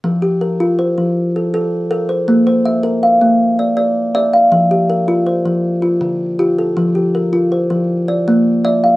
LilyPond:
\new Staff \with { instrumentName = "Kalimba" } { \time 12/8 \key f \major \tempo 4. = 107 << { r8 g'8 bes'4 c''4. a'4. bes'8 c''8~ | c''8 c''8 e''4 f''4. d''4. e''8 f''8~ | f''8 g'8 bes'4 c''4. f'4. g'8 a'8~ | a'8 g'8 bes'4 c''4. d''4. e''8 f''8 | } \\ { f4 r8 f'4 f4 r8 a'4 a'4 | bes4 r8 bes'4 bes4 r8 d''4 d''4 | f4 r8 f'4 f8 r4 d4 f'4 | f4 r8 f'4 f8 r4 bes4 d''4 | } >> }